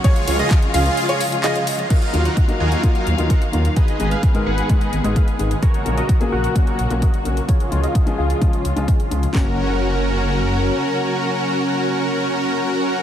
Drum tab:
CC |----------------|x---------------|----------------|----------------|
RD |x-x-x-x-x-x-x-x-|----------------|----------------|----------------|
HH |xxoxxxoxoxoxxxox|xxxxxx-xxxxxxxxx|xxxxxx-xxxxxxxxx|xxxxxx-xxxxxxxxx|
CP |----x-------x---|----------------|----------------|----------------|
SD |----------------|----------------|----------------|----------------|
BD |o---o-----------|o---o---o---o---|o---o---o---o---|o---o---o---o---|

CC |----------------|----------------|----------------|
RD |----------------|----------------|----------------|
HH |xxxxxx-xxxxxxxxx|----------------|----------------|
CP |----------------|x---------------|----------------|
SD |----------------|o---------------|----------------|
BD |o---o---o---o---|o---------------|----------------|